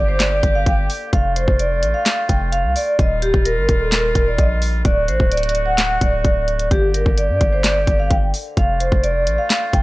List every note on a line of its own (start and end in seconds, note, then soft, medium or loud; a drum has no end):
0.00 0.41 G1 loud
0.00 2.95 D3 medium
0.00 1.11 A#3 medium
0.00 1.11 G4 medium
0.08 0.18 C5 medium
0.20 0.53 D5 medium
0.20 snare loud
0.20 clap medium
0.20 closed hi-hat medium
0.43 0.66 G1 loud
0.43 kick medium
0.43 closed hi-hat medium
0.55 0.65 F5 medium
0.66 0.89 G1 loud
0.66 0.86 G5 medium
0.66 kick loud
0.66 closed hi-hat medium
0.90 open hi-hat medium
1.13 1.46 F1 loud
1.13 2.97 A3 medium
1.13 2.97 F4 medium
1.13 1.32 F5 medium
1.13 kick loud
1.13 closed hi-hat medium
1.36 1.55 C5 medium
1.36 closed hi-hat medium
1.48 1.84 F1 loud
1.48 kick loud
1.59 1.92 D5 medium
1.59 closed hi-hat medium
1.83 1.94 A1 loud
1.83 closed hi-hat medium
1.94 2.27 F5 medium
2.06 snare loud
2.06 clap loud
2.06 closed hi-hat medium
2.29 2.66 F1 loud
2.29 2.48 G5 medium
2.29 kick medium
2.29 closed hi-hat medium
2.52 2.71 F5 medium
2.52 closed hi-hat medium
2.64 2.75 C2 loud
2.76 2.95 D5 medium
2.76 open hi-hat medium
2.99 3.32 D#1 loud
2.99 4.83 D#3 medium
2.99 4.83 G3 medium
2.99 4.83 F4 medium
2.99 3.18 D#5 medium
2.99 kick loud
2.99 closed hi-hat medium
3.22 3.41 G4 medium
3.22 closed hi-hat medium
3.34 3.59 D#1 loud
3.34 kick medium
3.45 3.78 A#4 medium
3.45 closed hi-hat medium
3.57 3.68 G1 loud
3.69 4.13 D#1 loud
3.69 kick loud
3.69 closed hi-hat medium
3.80 3.89 A4 medium
3.92 4.25 A#4 medium
3.92 snare loud
3.92 clap medium
3.92 closed hi-hat medium
4.15 4.38 D#1 loud
4.15 kick medium
4.15 closed hi-hat medium
4.28 4.37 D5 medium
4.38 4.83 A#1 loud
4.38 4.58 D#5 medium
4.38 kick loud
4.38 closed hi-hat medium
4.62 open hi-hat medium
4.85 5.10 D1 loud
4.85 9.83 D3 medium
4.85 6.69 A3 medium
4.85 6.69 F#4 medium
4.85 5.04 D5 loud
4.85 kick loud
4.85 closed hi-hat medium
5.08 5.19 A1 loud
5.08 5.28 C5 medium
5.08 closed hi-hat medium
5.20 5.98 D1 loud
5.20 kick loud
5.32 5.65 D5 medium
5.32 closed hi-hat medium
5.37 closed hi-hat medium
5.43 closed hi-hat medium
5.49 closed hi-hat medium
5.55 closed hi-hat medium
5.66 5.99 F#5 medium
5.78 snare loud
5.78 clap medium
5.78 closed hi-hat medium
6.01 6.24 D1 loud
6.01 6.67 D5 medium
6.01 kick medium
6.01 closed hi-hat medium
6.25 6.69 D1 loud
6.25 kick loud
6.25 closed hi-hat medium
6.48 closed hi-hat medium
6.59 closed hi-hat medium
6.71 7.05 G1 loud
6.71 8.40 A#3 medium
6.71 8.40 G4 medium
6.71 6.90 G4 medium
6.71 kick loud
6.71 closed hi-hat medium
6.94 7.13 A#4 medium
6.94 closed hi-hat medium
7.06 7.31 G1 loud
7.06 kick medium
7.18 7.51 D5 medium
7.18 closed hi-hat medium
7.29 7.40 G2 medium
7.41 7.86 G1 loud
7.41 kick loud
7.41 closed hi-hat medium
7.53 7.62 C5 medium
7.64 7.97 D5 medium
7.64 snare loud
7.64 clap medium
7.64 closed hi-hat medium
7.87 8.10 G1 loud
7.87 kick medium
7.87 closed hi-hat medium
7.99 8.09 F5 medium
8.11 8.33 G1 loud
8.11 8.30 G5 medium
8.11 kick loud
8.11 closed hi-hat medium
8.34 open hi-hat medium
8.57 8.91 F1 loud
8.57 9.83 A3 medium
8.57 9.83 F4 medium
8.57 8.76 F5 medium
8.57 kick loud
8.57 closed hi-hat medium
8.80 8.99 C5 medium
8.80 closed hi-hat medium
8.92 9.28 F1 loud
8.92 kick loud
9.03 9.36 D5 medium
9.03 closed hi-hat medium
9.27 9.38 A1 loud
9.27 closed hi-hat medium
9.38 9.71 F5 medium
9.50 snare loud
9.50 clap medium
9.50 closed hi-hat medium
9.73 9.83 F1 loud
9.73 9.83 G5 medium
9.73 kick medium
9.73 closed hi-hat medium